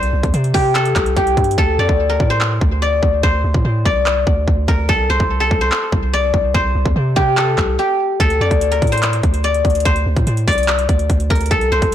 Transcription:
Already playing: 808-style bass C2, guzheng A4 C5 D5
0.03 closed hi-hat
0.13 808-style bass C2
0.23 808-style bass E2, kick, closed hi-hat
0.34 808-style bass C3, closed hi-hat
0.44 closed hi-hat
0.54 808-style bass C3, guzheng G4, kick, open hi-hat
0.75 guzheng A4, clap, closed hi-hat
0.85 closed hi-hat
0.96 808-style bass C2, kick, clap, closed hi-hat
1.06 closed hi-hat
1.17 808-style bass C2, guzheng G4, kick, closed hi-hat
1.27 closed hi-hat
1.37 808-style bass G2, kick, closed hi-hat
1.44 closed hi-hat
1.51 closed hi-hat
1.58 808-style bass D2, guzheng A4, kick
1.79 808-style bass F2, guzheng D5
1.89 808-style bass D2, kick
2.09 guzheng A#4
2.20 808-style bass A2, kick
2.30 guzheng C5
2.41 clap
2.61 808-style bass D2, kick
2.82 guzheng D5
3.03 808-style bass D2, kick
3.23 808-style bass D2, guzheng C5, kick
3.44 808-style bass D2
3.54 808-style bass A2, kick
3.65 808-style bass A2
3.85 808-style bass C2, guzheng D5, kick
4.06 clap
4.27 808-style bass D2, kick
4.48 808-style bass D2, kick
4.68 808-style bass D2, guzheng A#4, kick
4.89 808-style bass C2, guzheng A4, kick
5.10 808-style bass C2, guzheng C5
5.20 808-style bass C2, kick
5.40 guzheng A4
5.51 808-style bass C2, kick
5.61 guzheng C5
5.72 clap
5.92 808-style bass C2, kick
6.13 guzheng D5
6.34 808-style bass C2, kick
6.54 808-style bass C2, guzheng C5, kick
6.75 808-style bass C2
6.85 808-style bass E2, kick
6.96 808-style bass C3
7.16 808-style bass C3, guzheng G4, kick
7.37 guzheng A4, clap
7.58 808-style bass C2, kick, clap
7.79 guzheng G4
8.20 808-style bass D2, guzheng A4, kick, closed hi-hat
8.30 closed hi-hat
8.41 808-style bass F2, guzheng D5
8.51 808-style bass D2, kick, closed hi-hat
8.61 closed hi-hat
8.71 guzheng A#4, closed hi-hat
8.82 808-style bass A2, kick, closed hi-hat
8.87 closed hi-hat
8.92 guzheng C5, closed hi-hat
8.98 closed hi-hat
9.03 clap, closed hi-hat
9.13 closed hi-hat
9.23 808-style bass D2, kick, closed hi-hat
9.34 closed hi-hat
9.44 guzheng D5, closed hi-hat
9.54 closed hi-hat
9.65 808-style bass D2, kick, closed hi-hat
9.70 closed hi-hat
9.75 closed hi-hat
9.80 closed hi-hat
9.85 808-style bass D2, guzheng C5, kick, closed hi-hat
9.96 closed hi-hat
10.06 808-style bass D2
10.17 808-style bass A2, kick, closed hi-hat
10.27 808-style bass A2, closed hi-hat
10.37 closed hi-hat
10.48 808-style bass C2, guzheng D5, kick, closed hi-hat, open hi-hat
10.53 closed hi-hat
10.58 closed hi-hat
10.63 closed hi-hat
10.68 clap, closed hi-hat
10.79 closed hi-hat
10.89 808-style bass D2, kick, closed hi-hat
10.99 closed hi-hat
11.10 808-style bass D2, kick, closed hi-hat
11.20 closed hi-hat
11.30 808-style bass D2, guzheng A#4, kick, closed hi-hat
11.35 closed hi-hat
11.41 closed hi-hat
11.46 closed hi-hat
11.51 808-style bass C2, guzheng A4, kick, closed hi-hat
11.61 closed hi-hat
11.72 808-style bass C2, guzheng C5
11.82 808-style bass C2, kick, closed hi-hat

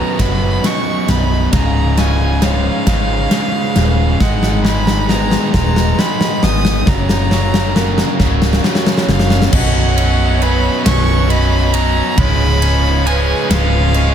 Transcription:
Already playing: overdriven electric guitar B1 F#2 B2, clean electric guitar B1 B2 C#4, string section B3 F#4 C#5 D#5, vibraphone B4, violin A#5
0.19 fingered electric bass F#1, overdriven electric guitar B1 F#2 B2, clean electric guitar F#3, violin B5, kick, snare, ride
0.63 overdriven electric guitar B1 F#2 B2, clean electric guitar F#2, violin C#6, snare, ride
1.08 fingered electric bass B0, clean electric guitar B2, violin B5, snare, ride
1.52 fingered electric bass C#1, overdriven electric guitar C#2 G#2 C#3, clean electric guitar C#2, string section C#4 G#4 B4 F5, vibraphone F5, violin A#5, kick, snare, ride
1.96 overdriven electric guitar C#2 G#2 C#3, clean electric guitar C#4, violin G#5, snare, ride
2.41 overdriven electric guitar C#2 G#2 C#3, clean electric guitar F3, vibraphone C#5, violin F5, snare, ride
2.86 fingered electric bass G#1, overdriven electric guitar C#2 G#2 C#3, clean electric guitar G#3, kick, snare, ride
3.31 overdriven electric guitar C#2 G#2 C#3, clean electric guitar C#3, vibraphone F5, snare, ride
3.76 fingered electric bass D#1, clean electric guitar F3, snare, ride
4.20 fingered electric bass G#1, overdriven electric guitar G#2 D#3 G#3, clean electric guitar G#2, string section G#3 F#5, vibraphone D#5, violin F#5, kick, snare
4.43 snare
4.64 overdriven electric guitar G#2 D#3 G#3, clean electric guitar G#4, violin B5, snare
4.87 snare
5.09 overdriven electric guitar G#2 D#3 G#3, clean electric guitar B3, vibraphone B4, violin A#5, snare
5.31 snare
5.53 fingered electric bass D#1, overdriven electric guitar G#2 D#3 G#3, clean electric guitar D#4, violin A#5, kick, snare
5.76 snare
5.98 overdriven electric guitar G#2 D#3 G#3, clean electric guitar G#3, vibraphone D#5, violin B5, snare
6.21 snare
6.42 fingered electric bass G#1, clean electric guitar B3, violin D#6, snare
6.65 snare
6.86 fingered electric bass F#1, overdriven electric guitar F#2 C#3 F#3, clean electric guitar F#2, string section F#3 F#4 A#4 F5, vibraphone C#5, violin A#5, kick, snare
7.09 snare
7.31 overdriven electric guitar F#2 C#3 F#3, clean electric guitar F#4, snare
7.54 snare
7.75 overdriven electric guitar F#2 C#3 F#3, clean electric guitar A#3, vibraphone A#4, snare
7.98 snare
8.19 fingered electric bass C#1, overdriven electric guitar F#2 C#3 F#3, clean electric guitar C#4, kick, snare
8.42 snare
8.53 snare
8.63 overdriven electric guitar F#2 C#3 F#3, clean electric guitar F#3, vibraphone C#5, snare
8.75 snare
8.87 snare
8.98 snare
9.08 fingered electric bass F#1, clean electric guitar A#3, violin F5, snare
9.19 snare
9.30 snare
9.42 snare
9.52 fingered electric bass B0, overdriven electric guitar B1 F#2 B2 F#3 C#4, string section B3 F#4 C#5 D#5, vibraphone D#5, violin F#5, kick, crash
9.96 overdriven electric guitar B2 F#3 C#4, ride
10.39 overdriven electric guitar F#2 B2 F#3 C#4, vibraphone B4, violin B5, ride
10.84 fingered electric bass B0, overdriven electric guitar B1 F#2 B2 F#3 C#4, violin C#6, snare, ride
11.28 overdriven electric guitar F#2 B2 F#3 C#4, vibraphone D#5, violin B5, ride
11.72 distorted electric guitar B2 F#3 C#4, violin A#5, ride
12.16 fingered electric bass C#1, overdriven electric guitar C#2 G#2 C#3 F3 G#3 C#4, string section C#4 G#4 B4 F5, vibraphone C#5, violin B5, kick, ride
12.61 overdriven electric guitar C#3 F3 G#3 C#4, ride
13.05 overdriven electric guitar C#3 F3 G#3 C#4, vibraphone B4, violin G#5, ride
13.48 fingered electric bass C#1, overdriven electric guitar C#2 G#2 C#3 F3 G#3 C#4, violin F5, snare, ride
13.93 overdriven electric guitar C#3 F3 G#3 C#4, vibraphone D#5, ride

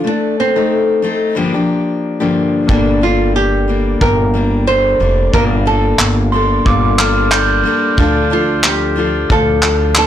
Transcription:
0.04 steel-string acoustic guitar A3 C4 A4, nylon-string guitar D4
0.40 nylon-string guitar C4
0.56 steel-string acoustic guitar A3 C4 D#4 A4
1.02 steel-string acoustic guitar A3 C4 D#4 A4
1.35 steel-string acoustic guitar G2 D3 F3 A#3 D4 G4
1.53 steel-string acoustic guitar F3 A#3 D4 G4
2.20 steel-string acoustic guitar G2 D3 F3 A#3 D4 G4
2.67 upright bass G1, steel-string acoustic guitar G2 D3 G3 A#3 D4 A4, felt piano A#3 A4 G5, nylon-string guitar D4, kick
3.01 steel-string acoustic guitar G3 A#3 D4 A4, nylon-string guitar F4
3.36 nylon-string guitar G4
3.68 steel-string acoustic guitar G3 A#3 D4
4.00 upright bass G1, felt piano A#3 G5 A5, nylon-string guitar A#4, kick
4.34 steel-string acoustic guitar G3 A#3 D4
4.67 steel-string acoustic guitar G3 A#3 D4 A4, nylon-string guitar C5
5.00 upright bass F1, steel-string acoustic guitar G3 A#3 D4 A4
5.33 upright bass G1, steel-string acoustic guitar G2 D3 G3 A#3 D4, felt piano A#3 F5 A5, nylon-string guitar A#4, kick
5.66 steel-string acoustic guitar G3 A#3 D4 A4, nylon-string guitar A4
5.99 upright bass G1, clap
6.32 steel-string acoustic guitar G3 A#3 D4 A4, glockenspiel C6
6.65 upright bass G1, felt piano A#3 A4 F5, glockenspiel D6, kick
6.98 steel-string acoustic guitar G3 A#3 D4 A4, glockenspiel F6, clap
7.31 steel-string acoustic guitar G3 A#3 D4 A4, glockenspiel G6, clap
7.64 steel-string acoustic guitar G3 A#3 D4 A4
7.97 upright bass D2, steel-string acoustic guitar D3 F3 D4 F4 A4, felt piano D4 A4 F5, nylon-string guitar D4, kick
8.30 steel-string acoustic guitar F3 D4 F4 A4, nylon-string guitar F4
8.64 nylon-string guitar G4, clap
8.96 steel-string acoustic guitar F3 D4 F4 A4
9.29 upright bass D2, felt piano D4 A4 F5, nylon-string guitar A4, kick
9.61 steel-string acoustic guitar F3 D4 F4 A4, clap
9.95 steel-string acoustic guitar F3 D4 F4 A4, nylon-string guitar A4, clap

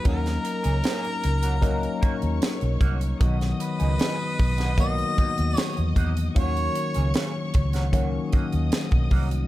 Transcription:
0.04 fingered electric bass D#2, tine electric piano F#3 A#3 C#4 D#4 A#4, clean electric guitar A#3 C#4 F#4, string section A#4 A#5, kick, closed hi-hat
0.08 harmonica A#4
0.26 snare, closed hi-hat
0.44 muted clean electric guitar stroke, closed hi-hat
0.63 fingered electric bass C#2, clean electric guitar A#3 C#4 G#4, closed hi-hat
0.83 clean electric guitar A#3 C#4 G#4, snare, closed hi-hat
1.04 closed hi-hat
1.24 fingered electric bass C#2, muted clean electric guitar stroke, closed hi-hat
1.43 clean electric guitar A#3 C#4 F#4, closed hi-hat
1.62 tine electric piano F#3 A#3 C#4 D#4 A#4, clean electric guitar A#3 C#4 F#4, kick, closed hi-hat
1.82 muted clean electric guitar stroke, closed hi-hat
2.02 clean electric guitar A#3 C#4 F#4, string section C#5 C#6, muted fingered electric bass stroke, kick, closed hi-hat
2.22 fingered electric bass D#2, muted clean electric guitar stroke, closed hi-hat
2.42 snare, closed hi-hat
2.61 fingered electric bass B1, muted clean electric guitar stroke, closed hi-hat
2.81 fingered electric bass C2, clean electric guitar A#3 C#4 F#4, kick, closed hi-hat
3.01 closed hi-hat
3.20 fingered electric bass B1, tine electric piano D#3 F#3 B3 F#4, clean electric guitar A#3 D#4 F#4, string section D#5 D#6, kick, closed hi-hat
3.41 snare, closed hi-hat
3.60 harmonica B4, muted clean electric guitar stroke, closed hi-hat
3.79 fingered electric bass C#2, clean electric guitar A#3 D#4 G#4, closed hi-hat
3.99 clean electric guitar A#3 D#4 G#4, snare, closed hi-hat
4.39 fingered electric bass B1, muted clean electric guitar stroke, kick, open hi-hat
4.58 clean electric guitar A#3 D#4 F#4, snare, closed hi-hat
4.77 tine electric piano D#3 F#3 A#3 B3 F#4, clean electric guitar A#3 D#4 F#4, harmonica D#5, kick, closed hi-hat
4.98 closed hi-hat
5.18 clean electric guitar A#3 D#4 F#4, muted fingered electric bass stroke, kick, closed hi-hat
5.37 fingered electric bass D#2, muted clean electric guitar stroke, closed hi-hat
5.57 harmonica C#5, snare, closed hi-hat
5.76 fingered electric bass E2, muted clean electric guitar stroke, closed hi-hat
5.96 fingered electric bass E2, clean electric guitar A#3 D#4 F#4, kick, closed hi-hat
6.17 muted clean electric guitar stroke, closed hi-hat
6.35 fingered electric bass D#2, tine electric piano D#3 F#3 A#3 C#4 F4, clean electric guitar A#3 C#4 F#4, string section C#5 C#6, harmonica C#5, kick, closed hi-hat
6.44 tine electric piano F#4
6.57 closed hi-hat
6.75 muted clean electric guitar stroke, closed hi-hat
6.94 fingered electric bass C#2, clean electric guitar A#3 C#4 G#4, closed hi-hat
7.14 clean electric guitar A#3 C#4 G#4, snare, closed hi-hat
7.54 fingered electric bass C#2, muted clean electric guitar stroke, kick, closed hi-hat
7.73 clean electric guitar A#3 C#4 F#4, snare, closed hi-hat
7.92 tine electric piano D#3 F#3 A#3 C#4 F#4, clean electric guitar A#3 C#4 F#4, kick, closed hi-hat
8.32 clean electric guitar A#3 C#4 F#4, string section D#5 D#6, muted fingered electric bass stroke, kick, closed hi-hat
8.52 fingered electric bass D#2, muted clean electric guitar stroke, closed hi-hat
8.72 snare, closed hi-hat
8.91 fingered electric bass B1, muted clean electric guitar stroke, kick, closed hi-hat
9.11 fingered electric bass C2, clean electric guitar A#3 C#4 F#4, kick, open hi-hat
9.31 closed hi-hat

